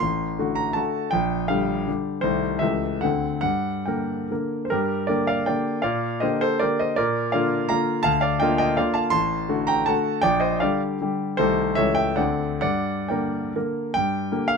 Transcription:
0.00 0.38 A1 medium
0.00 0.56 C6 medium
0.39 0.73 D3 soft
0.39 0.72 A3 soft
0.39 0.73 F#4 soft
0.55 0.75 A#5 medium
0.73 1.09 D3 soft
0.73 1.09 A3 soft
0.73 1.10 F#4 soft
0.73 1.12 A5 medium
1.11 1.49 A#1 medium
1.11 1.49 G5 medium
1.48 1.84 D3 soft
1.48 1.84 G3 soft
1.48 1.84 G4 soft
1.48 1.68 F5 medium
1.88 2.20 D3 soft
1.88 2.20 G3 soft
1.88 2.20 G4 soft
2.21 2.60 C2 medium
2.21 2.58 D#3 soft
2.21 2.58 A3 soft
2.21 2.58 G4 soft
2.21 2.61 C5 medium
2.59 3.01 C#2 soft
2.59 2.99 E3 soft
2.59 2.99 A3 soft
2.59 2.99 G4 soft
2.59 3.01 E5 medium
3.01 3.42 D2 soft
3.01 3.39 D3 soft
3.01 3.40 C4 soft
3.01 3.40 A4 soft
3.01 3.39 F#5 medium
3.41 3.85 G2 soft
3.41 3.85 F#5 medium
3.86 4.27 D3 soft
3.86 4.27 A#3 soft
3.86 4.27 A#4 soft
3.86 4.30 G5 soft
4.31 4.68 D3 soft
4.31 4.68 A#3 soft
4.31 4.68 A#4 soft
4.65 4.71 C5 soft
4.70 5.08 G2 soft
4.70 5.07 G4 medium
4.70 5.07 A#4 medium
5.07 5.44 D3 soft
5.07 5.44 A#3 soft
5.07 5.44 G4 soft
5.07 5.27 A#4 soft
5.07 5.27 D5 medium
5.27 5.46 D5 medium
5.27 5.47 F5 medium
5.46 5.81 D3 soft
5.46 5.82 A#3 soft
5.46 5.82 G4 soft
5.46 5.82 D5 soft
5.46 5.84 G5 medium
5.82 6.22 A#2 medium
5.82 6.20 D5 medium
5.82 6.22 F5 medium
6.20 6.59 D3 soft
6.20 6.59 A#3 soft
6.20 6.59 G4 soft
6.20 6.40 C5 soft
6.20 6.42 D#5 medium
6.41 6.61 A4 medium
6.41 6.62 C5 medium
6.59 6.94 D3 soft
6.59 6.95 A#3 soft
6.59 6.95 G4 soft
6.59 6.79 A#4 medium
6.59 6.80 D5 medium
6.79 6.97 C5 soft
6.79 6.98 D#5 medium
6.96 7.33 A#2 medium
6.96 7.32 A#4 medium
6.96 7.32 D5 medium
7.32 7.67 D3 soft
7.32 7.68 A#3 soft
7.32 7.68 F4 medium
7.32 7.68 D5 medium
7.32 7.68 F5 medium
7.69 8.02 D3 soft
7.69 8.02 A#3 soft
7.69 8.02 F4 soft
7.69 8.02 F5 medium
7.69 8.04 A#5 medium
8.03 8.40 D2 medium
8.03 8.19 F5 medium
8.03 8.22 A5 loud
8.21 8.40 D5 medium
8.21 8.40 F5 medium
8.40 8.74 D3 soft
8.40 8.75 A#3 soft
8.40 8.75 F4 medium
8.40 8.58 D#5 medium
8.40 8.57 G5 medium
8.58 8.76 D#5 medium
8.58 8.77 G5 medium
8.77 9.10 D3 soft
8.77 9.10 A#3 soft
8.77 9.10 F4 soft
8.77 8.94 D5 medium
8.77 8.93 F5 medium
8.94 9.11 F5 medium
8.94 9.10 A5 medium
9.10 9.48 A1 medium
9.10 9.64 A5 medium
9.10 9.68 C6 loud
9.49 9.84 D3 soft
9.49 9.84 A3 soft
9.49 9.84 F#4 soft
9.67 9.86 G5 medium
9.67 9.87 A#5 medium
9.86 10.20 D3 soft
9.86 10.20 A3 soft
9.86 10.20 F#4 soft
9.86 10.21 F#5 medium
9.86 10.23 A5 medium
10.22 10.60 A#1 medium
10.22 10.40 D5 medium
10.22 10.41 G5 loud
10.40 10.59 C5 medium
10.40 10.60 D#5 medium
10.60 10.98 D3 soft
10.60 10.98 G3 soft
10.60 10.98 G4 soft
10.60 10.80 D5 medium
10.60 10.81 F5 medium
11.01 11.35 D3 soft
11.01 11.35 G3 soft
11.01 11.36 G4 soft
11.37 11.76 C2 medium
11.37 11.74 D#3 soft
11.37 11.74 A3 soft
11.37 11.74 G4 soft
11.37 11.75 A4 medium
11.37 11.77 C5 medium
11.75 12.17 C#2 medium
11.75 12.14 E3 soft
11.75 12.14 A3 soft
11.75 12.15 G4 soft
11.75 11.96 C#5 medium
11.75 11.94 E5 medium
11.95 12.16 E5 medium
11.95 12.17 G5 medium
12.16 12.60 D2 soft
12.16 12.58 D3 soft
12.16 12.58 C4 soft
12.16 12.58 A4 soft
12.16 12.58 D5 medium
12.16 12.59 F#5 medium
12.61 13.09 G2 medium
12.61 13.07 D5 medium
12.61 13.09 F#5 medium
13.08 13.52 D3 soft
13.08 13.52 A#3 soft
13.08 13.52 A#4 soft
13.08 13.52 D5 soft
13.08 13.54 G5 medium
13.56 13.92 D3 soft
13.56 13.92 A#3 soft
13.56 13.92 A#4 soft
13.94 14.30 G2 soft
13.94 14.48 G5 medium
14.32 14.57 D3 soft
14.32 14.57 A#3 soft
14.32 14.57 G4 soft
14.48 14.57 F5 medium

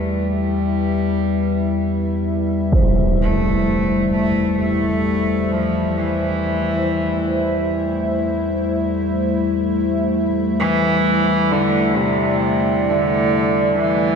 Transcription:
0.00 14.15 E2 medium
0.00 2.28 G3 medium
0.00 2.74 G3 medium
0.00 14.15 G3 medium
0.00 14.15 E4 medium
0.00 2.74 B4 medium
0.00 2.76 B4 medium
0.00 14.15 E5 medium
2.72 14.15 C5 medium
2.72 impact medium
3.22 4.10 A3 medium
3.34 14.15 A3 medium
4.12 4.55 A3 medium
4.59 5.55 A3 medium
4.94 11.05 C5 medium
5.53 5.99 F3 medium
5.98 7.82 E3 medium
10.60 11.54 E3 medium
10.78 14.15 D5 medium
11.52 11.98 D3 medium
11.97 12.91 C3 medium
12.90 13.79 D3 medium
13.79 14.15 E3 medium

